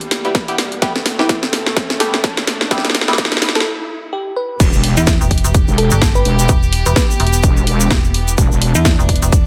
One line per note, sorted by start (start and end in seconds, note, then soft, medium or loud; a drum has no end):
0.00 3.62 E2 medium
0.00 3.62 B2 medium
0.00 0.81 G3 medium
0.00 closed hi-hat medium
0.00 riser medium
0.11 snare medium
0.11 open hi-hat loud
0.25 0.33 G3 medium
0.25 0.33 B3 medium
0.25 0.33 E4 medium
0.25 0.33 G4 medium
0.25 closed hi-hat soft
0.35 kick loud
0.35 snare medium
0.35 closed hi-hat medium
0.48 0.56 G3 medium
0.48 0.56 B3 medium
0.48 0.56 E4 medium
0.48 0.56 G4 loud
0.48 closed hi-hat medium
0.58 snare medium
0.58 open hi-hat medium
0.72 closed hi-hat soft
0.82 0.93 G3 medium
0.82 3.65 A3 medium
0.82 0.93 B3 medium
0.82 0.93 E4 medium
0.82 0.93 G4 loud
0.82 kick loud
0.82 snare medium
0.82 closed hi-hat medium
0.96 snare medium
0.96 closed hi-hat medium
1.06 snare medium
1.06 open hi-hat loud
1.19 1.27 G3 medium
1.19 1.27 B3 medium
1.19 1.27 E4 medium
1.19 1.37 E4 medium
1.19 1.27 G4 loud
1.19 snare medium
1.29 kick loud
1.29 snare medium
1.29 closed hi-hat medium
1.43 snare medium
1.43 closed hi-hat medium
1.53 snare medium
1.53 open hi-hat medium
1.66 snare medium
1.77 kick loud
1.77 snare medium
1.77 closed hi-hat medium
1.90 snare medium
1.90 closed hi-hat medium
2.00 2.16 G3 medium
2.00 2.16 B3 medium
2.00 2.16 E4 medium
2.00 2.16 G4 loud
2.00 2.35 A4 medium
2.00 snare loud
2.00 open hi-hat loud
2.14 snare medium
2.14 closed hi-hat soft
2.24 kick loud
2.24 snare loud
2.24 closed hi-hat medium
2.37 snare medium
2.37 closed hi-hat medium
2.47 snare loud
2.47 open hi-hat medium
2.61 snare medium
2.71 2.87 G3 medium
2.71 2.87 B3 medium
2.71 2.87 E4 medium
2.71 2.87 G4 loud
2.71 kick loud
2.71 snare loud
2.71 closed hi-hat medium
2.78 snare medium
2.85 snare medium
2.85 closed hi-hat medium
2.90 snare medium
2.95 snare loud
2.95 open hi-hat loud
3.01 snare medium
3.08 3.16 G3 medium
3.08 3.16 B3 medium
3.08 3.16 E4 medium
3.08 3.16 G4 medium
3.08 snare medium
3.08 closed hi-hat soft
3.13 snare medium
3.18 kick loud
3.18 snare loud
3.18 closed hi-hat medium
3.25 snare medium
3.32 snare medium
3.32 closed hi-hat medium
3.37 snare medium
3.42 snare loud
3.42 open hi-hat medium
3.49 snare medium
3.55 3.73 A4 medium
3.55 snare loud
3.55 closed hi-hat soft
3.60 snare loud
4.13 4.33 G4 medium
4.36 4.60 B4 medium
4.60 4.71 E1 loud
4.60 9.47 E3 medium
4.60 9.47 B3 medium
4.60 8.37 G4 medium
4.60 kick loud
4.60 closed hi-hat medium
4.60 crash loud
4.60 impact medium
4.60 shaker medium
4.73 4.95 E1 loud
4.73 shaker soft
4.84 open hi-hat loud
4.97 5.19 E2 loud
4.97 5.15 E4 medium
4.97 closed hi-hat medium
4.97 shaker medium
5.07 kick loud
5.07 snare loud
5.07 closed hi-hat medium
5.07 shaker medium
5.21 5.42 E1 medium
5.21 shaker soft
5.31 kick medium
5.31 open hi-hat medium
5.38 closed hi-hat medium
5.44 5.66 E1 loud
5.44 closed hi-hat medium
5.44 shaker medium
5.54 kick loud
5.54 closed hi-hat medium
5.54 shaker medium
5.68 5.90 E1 loud
5.68 shaker soft
5.78 6.13 A4 medium
5.78 open hi-hat loud
5.91 6.24 G1 loud
5.91 closed hi-hat medium
5.91 shaker medium
6.02 kick loud
6.02 snare loud
6.02 closed hi-hat medium
6.02 shaker medium
6.15 6.49 B4 medium
6.15 shaker soft
6.25 6.47 E1 loud
6.25 open hi-hat medium
6.39 closed hi-hat medium
6.39 shaker medium
6.49 6.84 E1 loud
6.49 kick loud
6.49 closed hi-hat medium
6.49 shaker medium
6.63 shaker soft
6.73 open hi-hat loud
6.86 6.95 E1 loud
6.86 6.93 B4 medium
6.86 closed hi-hat medium
6.86 shaker medium
6.96 7.05 B4 medium
6.96 kick loud
6.96 snare loud
6.96 closed hi-hat medium
6.96 shaker medium
7.10 shaker soft
7.20 7.42 E1 loud
7.20 open hi-hat loud
7.27 closed hi-hat medium
7.33 closed hi-hat medium
7.33 shaker medium
7.43 7.89 E1 loud
7.43 kick loud
7.43 closed hi-hat medium
7.43 shaker medium
7.57 shaker soft
7.67 open hi-hat loud
7.80 closed hi-hat medium
7.80 shaker medium
7.91 8.36 E1 loud
7.91 kick loud
7.91 snare loud
7.91 closed hi-hat medium
7.91 shaker medium
8.04 shaker soft
8.14 open hi-hat loud
8.28 closed hi-hat medium
8.28 shaker medium
8.38 8.49 E1 loud
8.38 9.47 D4 medium
8.38 kick loud
8.38 closed hi-hat medium
8.38 shaker medium
8.52 8.73 E1 loud
8.52 shaker soft
8.62 open hi-hat loud
8.75 8.97 E2 loud
8.75 8.93 E4 loud
8.75 closed hi-hat medium
8.75 shaker medium
8.85 kick loud
8.85 snare loud
8.85 closed hi-hat medium
8.85 shaker medium
8.99 9.20 E1 loud
8.99 shaker soft
9.09 kick medium
9.09 open hi-hat loud
9.16 closed hi-hat medium
9.22 9.44 E1 loud
9.22 closed hi-hat medium
9.22 shaker medium
9.32 kick loud
9.32 closed hi-hat medium
9.32 shaker medium